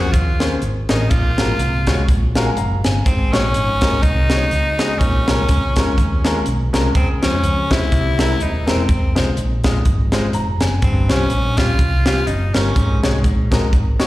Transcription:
0.01 F#4
0.12 D#2 F4, kick, closed hi-hat
0.40 A#3 C#4 G#4 C5, snare, closed hi-hat
0.62 G#1, closed hi-hat
0.89 A1 A#3 C#4 D#4 G#4 D#5, snare, closed hi-hat
1.11 A#1 A#2 F4, kick, closed hi-hat
1.38 G#1 G#3 F4 F#4 A#4, snare, closed hi-hat
1.59 C2, closed hi-hat
1.87 G#3 F4 F#4 C#5, kick, snare, closed hi-hat
2.08 A#1, kick, closed hi-hat
2.35 G#3 F4 F#4 A#4 F5, snare, closed hi-hat
2.46 G#5
2.57 F#1 F5 A#5, closed hi-hat
2.84 G1 G#5, snare, closed hi-hat
3.06 G#1 G#2 C4, kick, closed hi-hat
3.32 A#1 G#3 C#4 D#4 F#4 C#5, snare, closed hi-hat
3.54 G#1, closed hi-hat
3.81 G#3 D#4 F#4 A#4, kick, snare, closed hi-hat
4.03 C2 D#4, kick, closed hi-hat
4.30 G#3 D#4 F#4 C#5, snare, closed hi-hat
4.51 C#2, closed hi-hat
4.79 G#3 D#4 F#4 D#5, snare, closed hi-hat
4.99 A#1 A#2 C#4, kick, closed hi-hat
5.28 C2 G#3 C#4 F4 A#4, snare, closed hi-hat
5.49 C#2, kick, closed hi-hat
5.76 G#3 C#4 F4 A#4, kick, snare, closed hi-hat
5.98 D#2, kick, closed hi-hat
6.24 G#3 C#4 F4 A#4, snare, closed hi-hat
6.46 B1, closed hi-hat
6.73 C2 G#3 C#4 F4 A#4, snare, closed hi-hat
6.95 C#2 C#3 C4, kick, closed hi-hat
7.22 F2 G#3 C#4 F4 C5, snare, closed hi-hat
7.43 C#2, closed hi-hat
7.70 G#3 C#4 E4 F4 C5, kick, snare, closed hi-hat
7.92 C2 C3, kick, closed hi-hat
8.18 G#3 C4 E4 A#4, snare, closed hi-hat
8.40 D#1 D#4, closed hi-hat
8.66 E1 G#3 C4 E4 A#4, snare, closed hi-hat
8.89 F1, kick, closed hi-hat
9.15 C2 G#3 D#4 F4 C5, snare, closed hi-hat
9.37 A#1, closed hi-hat
9.64 G#3 D#4 F4 D#5, kick, snare, closed hi-hat
9.85 G#1, kick, closed hi-hat
10.12 G#3 D#4 F4 C5, snare, closed hi-hat
10.33 F1 A#5, closed hi-hat
10.60 F#1 G#5, snare, closed hi-hat
10.82 G1 G2 C4, kick, closed hi-hat
11.09 C2 G3 C#4 F4 C5, snare, closed hi-hat
11.30 A#1, closed hi-hat
11.57 G3 C#4 F4 G4, kick, snare, closed hi-hat
11.79 C2, kick, closed hi-hat
12.06 G3 C#4 F4 G4, snare, closed hi-hat
12.27 F#1 D#4, closed hi-hat
12.54 G1 G3 C#4 F4 A#4, snare, closed hi-hat
12.76 G#1 G#2, kick, closed hi-hat
13.03 C2 G#3 D#4 F#4 C#5, snare, closed hi-hat
13.24 A#1, kick, closed hi-hat
13.51 G#3 D#4 F#4 A#4, kick, snare, closed hi-hat
13.73 G#1, kick, closed hi-hat
13.99 G#3 D#4 F#4 C#5, snare, closed hi-hat

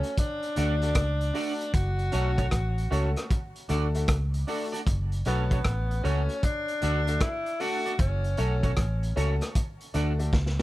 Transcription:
Already playing: C#4
0.03 closed hi-hat
0.17 D4, kick, closed hi-hat
0.43 closed hi-hat
0.56 D2 A3 D4 F#4 A4 D5, closed hi-hat
0.82 A3 D4 F#4 A4, closed hi-hat
0.95 C#2, kick, cross-stick, closed hi-hat
1.21 closed hi-hat
1.34 A3 D4 F#4 A4 D5, open hi-hat
1.60 closed hi-hat
1.74 F#1 F#4, kick, closed hi-hat
1.99 closed hi-hat
2.12 B1 A3 C#4 F#4 A4 C#5, closed hi-hat
2.38 C#4 F#4 A4 C#5, kick, closed hi-hat
2.51 A1, kick, cross-stick, closed hi-hat
2.78 closed hi-hat
2.91 C#2 A3 C#4 F#4 A4 C#5, closed hi-hat
3.16 cross-stick, closed hi-hat
3.31 kick, closed hi-hat
3.56 closed hi-hat
3.69 D2 A3 D4 F#4 A4 D5, closed hi-hat
3.95 A3 D4 F#4 A4, closed hi-hat
4.08 C#2, kick, cross-stick, closed hi-hat
4.34 closed hi-hat
4.47 A3 D4 F#4 A4 D5, open hi-hat
4.72 D4 F#4 A4 D5, closed hi-hat
4.87 F#1, kick, closed hi-hat
5.12 closed hi-hat
5.25 B1 A3 B3 C#4 F#4 A4 C#5, closed hi-hat
5.51 C#4 F#4 A4 C#5, kick, closed hi-hat
5.64 A1, kick, cross-stick, closed hi-hat
5.91 closed hi-hat
6.04 C#2 A3 C#4 F#4 A4 C#5, closed hi-hat
6.29 closed hi-hat
6.43 D4, kick, closed hi-hat
6.68 closed hi-hat
6.82 D2 A3 D4 F#4 A4 D5, closed hi-hat
7.07 A3 D4 F#4 A4, closed hi-hat
7.20 E4, kick, cross-stick, closed hi-hat
7.46 closed hi-hat
7.60 A3 D4 F#4 A4 D5, open hi-hat
7.86 D4 F#4 A4 D5, closed hi-hat
7.99 F#1 C#4, kick, closed hi-hat
8.24 closed hi-hat
8.37 B1 A3 C#4 F#4 A4 C#5, closed hi-hat
8.63 C#4 F#4 A4 C#5, kick, closed hi-hat
8.77 A1, kick, cross-stick, closed hi-hat
9.03 closed hi-hat
9.16 C#2 A3 C#4 F#4 A4 C#5, closed hi-hat
9.41 cross-stick, closed hi-hat
9.55 kick, closed hi-hat
9.81 closed hi-hat
9.94 D2 A3 D4 F#4 A4 D5, closed hi-hat
10.19 A3 D4 F#4 A4, closed hi-hat
10.33 C#2, kick, snare
10.46 snare

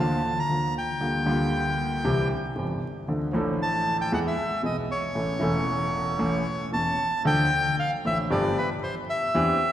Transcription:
Already playing: D2 D3 F3 A#3 F4
0.00 A5
0.39 A#5
0.49 D2 D3 F3 A#3 F4
0.78 G5
1.01 D2 D3 G3 A#3 F4
1.26 D2 D3 G3 A#3 F4
2.04 C2 C3 E3 G3 C4 G4
2.56 G1 G2 E3 G3 C4 G4
3.08 D2 D3 F3 A3 D4 A4
3.32 A1 A2 F3 A3 D4
3.36 A4
3.62 A5
4.01 G5
4.12 E2 E3 G#3 B3 G#4 F#5
4.27 E5
4.63 B1 B2 E3 G#3 B3 G#4 D#5
4.91 C#5
5.15 A1 A2 E3 A3 C#4 A4
5.39 E1 E2 E3 A3 C#4 A4
6.19 A1 A2 E3 A3 C#4 A4
6.72 E1 E2 E3 A3 C#4 A4 A5
7.25 D2 D3 F3 A3 D4 A4 G5
7.79 F5
8.05 A1 A2 F3 A3 D4 A4 E5
8.30 G1 G2 F3 B3 D4 G4 D5
8.58 B4
8.83 C5
9.10 E5
9.34 E2 E3 C4 D4 G4

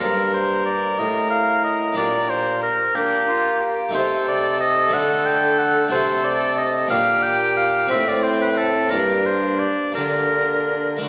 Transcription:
Already playing: A#3 D4
0.00 G2 G4 A#4
0.34 C5
0.66 D5
0.98 A2 D#5
1.30 F5
1.64 D#5
1.92 A#3 D4 G4
1.97 A#2 D5
2.30 C5
2.63 A#4
2.95 A#3 D4 G4
3.28 F4
3.61 G4
3.89 A3 D#4 G4
3.93 C3 A4 C5
4.28 D5
4.60 D#5
4.88 A3 D4 F#4
4.93 D3 F#5
5.26 G5
5.59 F#5
5.88 C3 A3 D4 F#4 A4
5.92 C3 C5
6.25 D5
6.57 D#5
6.86 A#3 D4 G4 F5
6.91 A#2 G4
7.23 G5
7.57 F5
7.86 C4 F#4
7.90 A2 E5
8.08 D5
8.23 C5
8.41 B4
8.57 A4
8.88 A#3 D4 G4 A#4
8.92 G2 D4
9.25 C5
9.60 D5
9.92 A#3 D4 G4 A#4
9.96 D3 D4
10.97 A3 D4 F#4
11.01 D3

